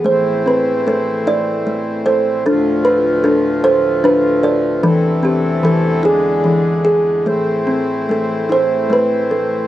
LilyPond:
<<
  \new Staff \with { instrumentName = "Kalimba" } { \time 6/8 \key a \minor \tempo 4. = 50 << { c''8 b'8 a'8 d''4 c''8 | a'8 b'8 a'8 c''8 b'8 a'8 | a'8 g'8 a'8 gis'4. | a'4 a'8 c''8 b'8 r8 | } \\ { a8 c'8 a8 e'8 a8 a'8 | d'8 f'8 d'8 a'8 d'8 d''8 | e8 c'8 e8 e'8 e8 gis'8 | a8 c'8 a8 e'8 a8 a'8 | } >> }
  \new Staff \with { instrumentName = "Harmonium" } { \clef bass \time 6/8 \key a \minor << { <a, e c'>2. | <d, a, f>2. | <c e a>4. <d gis>4. | <a, e c'>2. | } \\ { r2. | r2. | e,2. | r2. | } >> }
>>